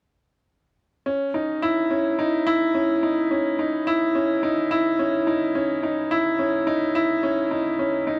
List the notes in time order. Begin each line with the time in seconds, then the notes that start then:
1.06 C#4
1.34 D#4
1.62 E4
1.91 C#4
2.19 D#4
2.47 E4
2.75 C#4
3.03 D#4
3.31 C#4
3.59 D#4
3.87 E4
4.15 C#4
4.43 D#4
4.71 E4
4.99 C#4
5.27 D#4
5.55 C#4
5.83 D#4
6.11 E4
6.39 C#4
6.67 D#4
6.95 E4
7.23 C#4
7.51 D#4
7.79 C#4
8.07 D#4